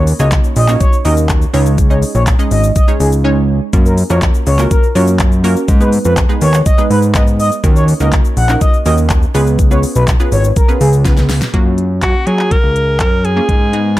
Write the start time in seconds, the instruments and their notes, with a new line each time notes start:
Already playing: analog synth bass D#2
0.07 open hi-hat, shaker
0.19 analog synth bass C#2, synth pluck A#3 C#4 D#4 F#4 C#5, analog synth lead D#5, shaker
0.32 kick, clap, closed hi-hat, shaker
0.44 shaker
0.56 analog synth bass A#1, analog synth lead D#5, open hi-hat, shaker
0.68 synth pluck A#3 C#4 D#4 F#4 C#5, clap, shaker
0.80 analog synth lead C#5, kick, closed hi-hat, shaker
0.93 shaker
1.05 analog synth bass D#2, synth pluck A#3 C#4 D#4 F#4 A#4, analog synth lead D#5, open hi-hat, shaker
1.17 shaker
1.29 kick, clap, closed hi-hat, shaker
1.42 shaker
1.53 analog synth bass C#2, synth pluck G#3 C#4 D#4 G#4 C#5, open hi-hat, shaker
1.66 shaker
1.78 kick, closed hi-hat, shaker
1.90 synth pluck G#3 C#4 D#4 G#4 D#5, analog synth lead C#5, shaker
2.02 open hi-hat, shaker
2.15 analog synth bass A#1, analog synth lead C#5, shaker
2.27 kick, clap, closed hi-hat, shaker
2.39 synth pluck G#3 C#4 D#4 G#4 D#5, shaker
2.51 analog synth bass G#1, analog synth lead D#5, open hi-hat, shaker
2.64 shaker
2.76 analog synth lead D#5, kick, closed hi-hat, shaker
2.88 synth pluck G#3 C#4 D#4 G#4 C#5, shaker
3.00 analog synth bass C#2, analog synth lead G#4, open hi-hat, shaker
3.12 shaker
3.24 synth pluck G#3 C#4 D#4 G#4 C#5
3.73 analog synth bass F#2, synth pluck A#3 C#4 F4 F#4 A#4, kick, closed hi-hat, shaker
3.85 analog synth lead A#4, shaker
3.98 open hi-hat, shaker
4.10 analog synth bass F2, synth pluck A#3 C#4 F4 F#4 A#4, analog synth lead C#5, shaker
4.22 kick, clap, closed hi-hat, shaker
4.34 shaker
4.47 analog synth bass C#2, analog synth lead C#5, open hi-hat, shaker
4.59 synth pluck A#3 C#4 F4 F#4 A#4, clap, shaker
4.71 analog synth lead A#4, kick, closed hi-hat, shaker
4.83 shaker
4.95 analog synth bass F#2, synth pluck A#3 C#4 F4 F#4 A#4, analog synth lead C#5, open hi-hat, shaker
5.07 shaker
5.19 kick, clap, closed hi-hat, shaker
5.32 shaker
5.44 synth pluck A#3 C#4 F4 F#4 A#4, open hi-hat, shaker
5.56 shaker
5.68 analog synth bass G#2, kick, closed hi-hat, shaker
5.80 synth pluck G#3 B3 D#4 G#4 B4, analog synth lead B4, shaker
5.93 open hi-hat, shaker
6.05 analog synth bass F2, analog synth lead B4, shaker
6.17 kick, clap, closed hi-hat, shaker
6.29 synth pluck G#3 B3 D#4 G#4 B4, shaker
6.41 analog synth bass D#2, analog synth lead C#5, open hi-hat, shaker
6.54 clap, shaker
6.66 analog synth lead D#5, kick, closed hi-hat, shaker
6.78 synth pluck G#3 B3 D#4 G#4 B4, shaker
6.90 analog synth bass G#2, analog synth lead B4, open hi-hat, shaker
7.02 shaker
7.15 synth pluck G#3 B3 D#4 G#4 B4, analog synth lead D#5, kick, clap, closed hi-hat, shaker
7.27 shaker
7.40 analog synth lead D#5, open hi-hat, shaker
7.52 shaker
7.64 analog synth bass D#2, synth pluck A#3 C#4 D#4 F#4 A#4, kick, closed hi-hat, shaker
7.76 analog synth lead C#5, shaker
7.88 open hi-hat, shaker
8.00 analog synth bass C#2, synth pluck A#3 C#4 D#4 F#4 A#4, analog synth lead D#5, shaker
8.12 kick, clap, closed hi-hat, shaker
8.25 shaker
8.37 analog synth bass A#1, analog synth lead F#5, open hi-hat, shaker
8.49 synth pluck A#3 C#4 D#4 F#4 A#4, clap, shaker
8.61 analog synth lead D#5, kick, closed hi-hat, shaker
8.73 shaker
8.85 analog synth bass D#2, synth pluck A#3 C#4 D#4 F#4 A#4, analog synth lead D#5, open hi-hat, shaker
8.98 shaker
9.10 kick, clap, closed hi-hat, shaker
9.22 shaker
9.34 analog synth bass C#2, synth pluck B3 C#4 F4 G#4 B4, open hi-hat, shaker
9.47 shaker
9.59 kick, closed hi-hat, shaker
9.71 synth pluck B3 C#4 F4 G#4 B4, analog synth lead C#5, shaker
9.83 open hi-hat, shaker
9.95 analog synth bass B1, analog synth lead B4, shaker
10.08 kick, clap, closed hi-hat, shaker
10.20 synth pluck B3 C#4 F4 G#4 B4, shaker
10.32 analog synth bass G#1, analog synth lead C#5, open hi-hat, shaker
10.44 shaker
10.56 analog synth lead A#4, kick, closed hi-hat, shaker
10.68 synth pluck B3 C#4 F4 G#4 B4, shaker
10.81 analog synth bass C#2, analog synth lead G#4, open hi-hat, shaker
10.93 shaker
11.05 synth pluck B3 C#4 F4 G#4 B4, kick, snare, closed hi-hat, shaker
11.17 snare, shaker
11.29 snare, open hi-hat, shaker
11.42 snare, shaker
11.54 analog synth bass F#2, synth pluck A#3 C#4 F4 F#4, kick, closed hi-hat
11.78 closed hi-hat
12.02 synth pluck A#3 C#4 F4 F#4, alto saxophone F#4, kick, clap, closed hi-hat
12.27 analog synth bass F#3, alto saxophone G#4, closed hi-hat
12.39 clap
12.51 alto saxophone A#4, kick, closed hi-hat
12.63 analog synth bass C#2
12.76 closed hi-hat
13.00 analog synth bass F#2, alto saxophone A#4, kick, clap, closed hi-hat
13.25 alto saxophone G#4, closed hi-hat
13.36 synth pluck A#3 C#4 F4 G#4
13.49 analog synth bass G#2, kick, closed hi-hat
13.73 synth pluck G#3 B3 D#4 G#4, closed hi-hat